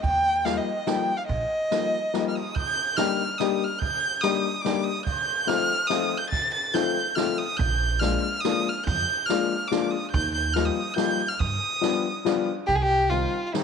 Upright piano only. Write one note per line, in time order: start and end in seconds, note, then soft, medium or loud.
0.45 0.68 F3 medium
0.45 0.67 G3 medium
0.45 0.67 A#3 medium
0.45 0.67 D#4 medium
0.87 1.09 F3 medium
0.87 1.09 G3 medium
0.87 1.10 A#3 medium
0.87 1.09 D#4 medium
1.71 1.94 F3 medium
1.71 1.94 G3 soft
1.71 1.94 A#3 medium
1.71 1.94 D#4 medium
2.14 2.36 F3 medium
2.14 2.36 G3 medium
2.14 2.36 A#3 medium
2.14 2.37 D#4 medium
2.98 3.21 G3 medium
2.98 3.21 A#3 medium
2.98 3.21 D4 medium
2.98 3.21 D#4 medium
2.98 3.21 G4 medium
3.40 3.62 G3 medium
3.40 3.63 A#3 medium
3.40 3.63 D4 medium
3.40 3.62 D#4 medium
3.40 3.63 G4 medium
4.23 4.45 G3 medium
4.23 4.46 A#3 medium
4.23 4.46 D4 medium
4.23 4.46 D#4 medium
4.23 4.46 G4 medium
4.65 4.87 G3 medium
4.65 4.87 A#3 medium
4.65 4.87 D4 medium
4.65 4.87 D#4 medium
4.65 4.88 G4 medium
5.47 5.70 F3 medium
5.47 5.70 A3 medium
5.47 5.70 C4 medium
5.47 5.70 D#4 medium
5.47 5.70 F4 medium
5.90 6.13 F3 medium
5.90 6.13 A3 medium
5.90 6.13 C4 medium
5.90 6.12 D#4 medium
5.90 6.13 F4 medium
6.73 6.97 F3 medium
6.73 6.97 A3 medium
6.73 6.97 C4 medium
6.73 6.97 D#4 medium
6.73 6.97 F4 medium
7.16 7.40 F3 medium
7.16 7.39 A3 medium
7.16 7.40 C4 medium
7.16 7.40 D#4 medium
7.16 7.40 F4 medium
8.01 8.24 F3 medium
8.01 8.24 G#3 medium
8.01 8.24 A#3 medium
8.01 8.24 D4 medium
8.01 8.25 F4 medium
8.45 8.67 F3 medium
8.45 8.67 G#3 soft
8.45 8.67 A#3 medium
8.45 8.67 D4 medium
8.45 8.67 F4 medium
9.29 9.52 F3 medium
9.29 9.52 G#3 medium
9.29 9.52 A#3 medium
9.29 9.52 D4 medium
9.29 9.52 F4 medium
9.71 9.94 F3 medium
9.71 9.94 G#3 medium
9.71 9.94 A#3 medium
9.71 9.94 D4 medium
9.71 9.94 F4 medium
10.56 10.78 F3 medium
10.56 10.78 G3 medium
10.56 10.78 A#3 medium
10.56 10.78 D#4 medium
10.56 10.78 F4 medium
10.96 11.19 F3 medium
10.96 11.20 G3 medium
10.96 11.20 A#3 medium
10.96 11.20 D#4 medium
10.96 11.20 F4 medium
11.81 12.05 F3 medium
11.81 12.05 G3 medium
11.81 12.05 B3 medium
11.81 12.05 D4 medium
11.81 12.05 F4 medium
12.25 12.48 F3 medium
12.25 12.48 G3 medium
12.25 12.48 B3 medium
12.25 12.49 D4 medium
12.25 12.48 F4 medium
13.11 13.34 D#3 medium
13.11 13.34 G3 soft
13.11 13.34 C4 medium
13.11 13.34 D#4 medium
13.54 13.64 D#3 medium
13.54 13.64 G3 medium
13.54 13.64 C4 medium
13.54 13.64 D#4 medium